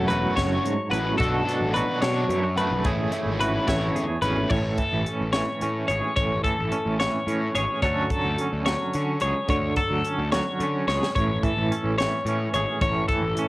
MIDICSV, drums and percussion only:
0, 0, Header, 1, 2, 480
1, 0, Start_track
1, 0, Key_signature, 3, "major"
1, 0, Tempo, 553506
1, 1036, Time_signature, 6, 3, 24, 8
1, 11690, End_track
2, 0, Start_track
2, 0, Title_t, "Drums"
2, 87, Note_on_c, 9, 42, 58
2, 174, Note_off_c, 9, 42, 0
2, 320, Note_on_c, 9, 36, 75
2, 320, Note_on_c, 9, 42, 84
2, 326, Note_on_c, 9, 38, 112
2, 407, Note_off_c, 9, 36, 0
2, 407, Note_off_c, 9, 42, 0
2, 413, Note_off_c, 9, 38, 0
2, 568, Note_on_c, 9, 42, 59
2, 655, Note_off_c, 9, 42, 0
2, 809, Note_on_c, 9, 42, 55
2, 896, Note_off_c, 9, 42, 0
2, 1041, Note_on_c, 9, 36, 106
2, 1052, Note_on_c, 9, 42, 76
2, 1127, Note_off_c, 9, 36, 0
2, 1139, Note_off_c, 9, 42, 0
2, 1289, Note_on_c, 9, 42, 60
2, 1375, Note_off_c, 9, 42, 0
2, 1525, Note_on_c, 9, 42, 55
2, 1611, Note_off_c, 9, 42, 0
2, 1751, Note_on_c, 9, 42, 84
2, 1757, Note_on_c, 9, 38, 115
2, 1837, Note_off_c, 9, 42, 0
2, 1843, Note_off_c, 9, 38, 0
2, 1998, Note_on_c, 9, 42, 60
2, 2084, Note_off_c, 9, 42, 0
2, 2233, Note_on_c, 9, 42, 55
2, 2320, Note_off_c, 9, 42, 0
2, 2467, Note_on_c, 9, 42, 75
2, 2471, Note_on_c, 9, 36, 107
2, 2554, Note_off_c, 9, 42, 0
2, 2557, Note_off_c, 9, 36, 0
2, 2705, Note_on_c, 9, 42, 66
2, 2792, Note_off_c, 9, 42, 0
2, 2954, Note_on_c, 9, 42, 63
2, 3040, Note_off_c, 9, 42, 0
2, 3188, Note_on_c, 9, 42, 90
2, 3190, Note_on_c, 9, 36, 79
2, 3194, Note_on_c, 9, 38, 110
2, 3275, Note_off_c, 9, 42, 0
2, 3277, Note_off_c, 9, 36, 0
2, 3281, Note_off_c, 9, 38, 0
2, 3435, Note_on_c, 9, 42, 68
2, 3522, Note_off_c, 9, 42, 0
2, 3662, Note_on_c, 9, 42, 62
2, 3749, Note_off_c, 9, 42, 0
2, 3901, Note_on_c, 9, 49, 79
2, 3909, Note_on_c, 9, 36, 102
2, 3988, Note_off_c, 9, 49, 0
2, 3996, Note_off_c, 9, 36, 0
2, 4142, Note_on_c, 9, 42, 54
2, 4148, Note_on_c, 9, 36, 72
2, 4229, Note_off_c, 9, 42, 0
2, 4235, Note_off_c, 9, 36, 0
2, 4391, Note_on_c, 9, 42, 56
2, 4477, Note_off_c, 9, 42, 0
2, 4620, Note_on_c, 9, 42, 81
2, 4626, Note_on_c, 9, 38, 107
2, 4707, Note_off_c, 9, 42, 0
2, 4713, Note_off_c, 9, 38, 0
2, 4868, Note_on_c, 9, 42, 55
2, 4954, Note_off_c, 9, 42, 0
2, 5112, Note_on_c, 9, 42, 54
2, 5199, Note_off_c, 9, 42, 0
2, 5349, Note_on_c, 9, 36, 97
2, 5350, Note_on_c, 9, 42, 66
2, 5436, Note_off_c, 9, 36, 0
2, 5437, Note_off_c, 9, 42, 0
2, 5589, Note_on_c, 9, 36, 76
2, 5594, Note_on_c, 9, 42, 56
2, 5675, Note_off_c, 9, 36, 0
2, 5681, Note_off_c, 9, 42, 0
2, 5825, Note_on_c, 9, 42, 54
2, 5912, Note_off_c, 9, 42, 0
2, 6071, Note_on_c, 9, 42, 80
2, 6077, Note_on_c, 9, 38, 109
2, 6158, Note_off_c, 9, 42, 0
2, 6164, Note_off_c, 9, 38, 0
2, 6314, Note_on_c, 9, 42, 58
2, 6401, Note_off_c, 9, 42, 0
2, 6553, Note_on_c, 9, 42, 59
2, 6640, Note_off_c, 9, 42, 0
2, 6785, Note_on_c, 9, 36, 100
2, 6785, Note_on_c, 9, 42, 77
2, 6871, Note_off_c, 9, 36, 0
2, 6872, Note_off_c, 9, 42, 0
2, 7027, Note_on_c, 9, 36, 78
2, 7028, Note_on_c, 9, 42, 65
2, 7114, Note_off_c, 9, 36, 0
2, 7115, Note_off_c, 9, 42, 0
2, 7270, Note_on_c, 9, 42, 60
2, 7357, Note_off_c, 9, 42, 0
2, 7510, Note_on_c, 9, 42, 86
2, 7516, Note_on_c, 9, 38, 103
2, 7596, Note_off_c, 9, 42, 0
2, 7602, Note_off_c, 9, 38, 0
2, 7748, Note_on_c, 9, 42, 66
2, 7835, Note_off_c, 9, 42, 0
2, 7979, Note_on_c, 9, 42, 59
2, 8065, Note_off_c, 9, 42, 0
2, 8225, Note_on_c, 9, 42, 76
2, 8228, Note_on_c, 9, 36, 98
2, 8312, Note_off_c, 9, 42, 0
2, 8314, Note_off_c, 9, 36, 0
2, 8466, Note_on_c, 9, 42, 59
2, 8469, Note_on_c, 9, 36, 77
2, 8553, Note_off_c, 9, 42, 0
2, 8556, Note_off_c, 9, 36, 0
2, 8711, Note_on_c, 9, 42, 58
2, 8798, Note_off_c, 9, 42, 0
2, 8951, Note_on_c, 9, 42, 79
2, 8957, Note_on_c, 9, 38, 103
2, 9037, Note_off_c, 9, 42, 0
2, 9043, Note_off_c, 9, 38, 0
2, 9196, Note_on_c, 9, 42, 58
2, 9282, Note_off_c, 9, 42, 0
2, 9441, Note_on_c, 9, 38, 52
2, 9528, Note_off_c, 9, 38, 0
2, 9567, Note_on_c, 9, 38, 80
2, 9654, Note_off_c, 9, 38, 0
2, 9677, Note_on_c, 9, 36, 98
2, 9682, Note_on_c, 9, 42, 71
2, 9764, Note_off_c, 9, 36, 0
2, 9769, Note_off_c, 9, 42, 0
2, 9915, Note_on_c, 9, 36, 75
2, 9921, Note_on_c, 9, 42, 61
2, 10002, Note_off_c, 9, 36, 0
2, 10007, Note_off_c, 9, 42, 0
2, 10164, Note_on_c, 9, 42, 60
2, 10250, Note_off_c, 9, 42, 0
2, 10406, Note_on_c, 9, 42, 80
2, 10412, Note_on_c, 9, 38, 105
2, 10493, Note_off_c, 9, 42, 0
2, 10499, Note_off_c, 9, 38, 0
2, 10636, Note_on_c, 9, 42, 61
2, 10723, Note_off_c, 9, 42, 0
2, 10873, Note_on_c, 9, 42, 56
2, 10959, Note_off_c, 9, 42, 0
2, 11112, Note_on_c, 9, 36, 100
2, 11112, Note_on_c, 9, 42, 75
2, 11199, Note_off_c, 9, 36, 0
2, 11199, Note_off_c, 9, 42, 0
2, 11347, Note_on_c, 9, 42, 66
2, 11351, Note_on_c, 9, 36, 78
2, 11434, Note_off_c, 9, 42, 0
2, 11437, Note_off_c, 9, 36, 0
2, 11592, Note_on_c, 9, 42, 63
2, 11679, Note_off_c, 9, 42, 0
2, 11690, End_track
0, 0, End_of_file